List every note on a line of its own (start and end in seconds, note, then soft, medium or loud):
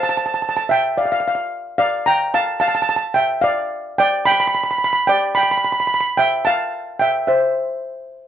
0.03 0.08 A5 medium
0.09 0.16 A5 medium
0.17 0.24 A5 medium
0.26 0.32 A5 medium
0.34 0.40 A5 medium
0.42 0.48 A5 medium
0.49 0.55 A5 medium
0.57 0.63 A5 medium
0.69 0.95 E5 medium
0.69 0.99 G5 medium
0.97 1.04 D5 medium
0.97 1.04 F5 medium
1.05 1.11 F5 medium
1.12 1.19 F5 medium
1.20 1.26 F5 medium
1.28 1.34 F5 medium
1.35 1.42 F5 medium
1.78 2.05 D5 medium
1.78 2.07 F5 medium
2.06 2.20 G5 medium
2.06 2.19 A#5 loud
2.34 2.60 F5 medium
2.34 2.59 A5 loud
2.60 2.69 F5 medium
2.60 2.67 A5 medium
2.68 2.74 A5 medium
2.75 2.81 A5 medium
2.82 2.88 A5 medium
2.89 2.95 A5 medium
2.96 3.06 A5 medium
3.14 3.42 E5 medium
3.14 3.44 G5 medium
3.41 3.83 D5 medium
3.41 3.81 F5 medium
3.98 4.25 D5 medium
3.98 4.26 G5 loud
4.25 4.34 G5 medium
4.25 4.31 B5 loud
4.32 4.39 B5 medium
4.40 4.46 B5 medium
4.47 4.53 B5 medium
4.55 4.62 B5 medium
4.64 4.70 B5 medium
4.71 4.77 B5 medium
4.78 4.83 B5 medium
4.84 4.92 B5 medium
4.93 5.00 B5 medium
5.07 5.35 D5 medium
5.07 5.36 G5 medium
5.35 5.44 G5 medium
5.35 5.42 B5 loud
5.43 5.50 B5 medium
5.51 5.56 B5 medium
5.58 5.63 B5 medium
5.65 5.71 B5 medium
5.72 5.79 B5 medium
5.80 5.86 B5 medium
5.87 5.93 B5 medium
5.94 5.99 B5 medium
6.01 6.10 B5 medium
6.17 6.45 E5 medium
6.17 6.47 G5 loud
6.45 6.98 F5 medium
6.45 7.02 A5 medium
6.99 7.26 E5 medium
6.99 7.29 G5 medium
7.27 8.07 C5 medium
7.27 8.07 E5 medium